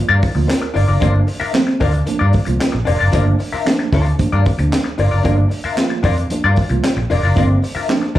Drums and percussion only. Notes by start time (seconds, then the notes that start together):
0.23 kick, open hi-hat
0.50 snare, clap, closed hi-hat
0.76 open hi-hat
1.02 kick, closed hi-hat
1.28 open hi-hat
1.54 snare, clap, closed hi-hat
1.81 kick, open hi-hat
1.94 closed hi-hat
2.07 closed hi-hat
2.33 kick, open hi-hat
2.46 closed hi-hat
2.61 snare, clap, closed hi-hat
2.87 open hi-hat
3.13 kick, closed hi-hat
3.40 open hi-hat
3.67 snare, clap, closed hi-hat
3.93 kick, open hi-hat
4.06 closed hi-hat
4.19 kick, closed hi-hat
4.46 kick, open hi-hat
4.59 closed hi-hat
4.72 snare, clap, closed hi-hat
4.98 open hi-hat
5.25 kick, closed hi-hat
5.51 open hi-hat
5.77 snare, clap, closed hi-hat
6.04 kick, open hi-hat
6.17 closed hi-hat
6.30 closed hi-hat
6.56 kick, open hi-hat
6.69 closed hi-hat
6.84 snare, clap, closed hi-hat
7.11 open hi-hat
7.37 kick, closed hi-hat
7.64 open hi-hat
7.89 snare, clap, closed hi-hat
8.16 kick